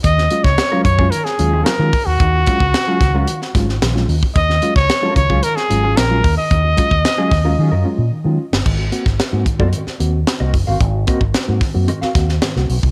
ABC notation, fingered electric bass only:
X:1
M:4/4
L:1/16
Q:1/4=112
K:Ebdor
V:1 name="Fingered electric bass" clef=bass
E,,2 z D,, z2 G,,2 z2 E,,2 z E, z E,, | E,,2 z D,, z2 D,,2 z2 A,,,2 B,,,2 E,, z | E,,2 z D,, z2 D,,2 z2 A,,,2 B,,,2 E,, z | E,,2 z E,, z2 E,,2 E, G,, z B,, z E, z =G,,, |
A,,,2 z A,,, z A,, z G,, z2 E,,2 z C,, G,,, =G,,, | A,,,2 z A,,, z A,, z G,, z2 E,,2 z C,, _C,, =C,, |]